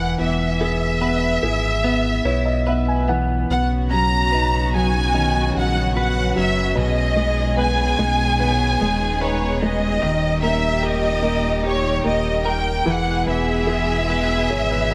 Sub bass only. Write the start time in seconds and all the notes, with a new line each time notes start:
Already playing: E1
0.19 E1
1.42 G#1
2.24 B1
3.49 B1
5.56 A#1
6.37 F#1
6.77 B1
7.99 B1
8.81 D#1
10.02 D#1
12.05 D#1
12.86 E1
13.27 E1
14.50 G#1